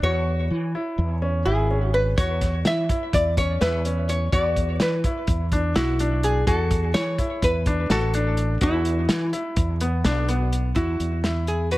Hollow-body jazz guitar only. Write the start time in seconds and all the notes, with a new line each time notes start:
0.03 C#5
1.45 G#4
1.94 B4
2.18 C#5
2.67 E5
3.14 D5
3.38 C#5
3.62 B4
4.10 C#5
4.33 D5
4.69 C#5
4.82 B4
5.76 E4
6.24 G#4
6.47 A4
6.84 G#4
6.94 C#5
7.44 B4
7.91 A4
8.63 E4
10.76 E4
11.48 G#4
11.72 B4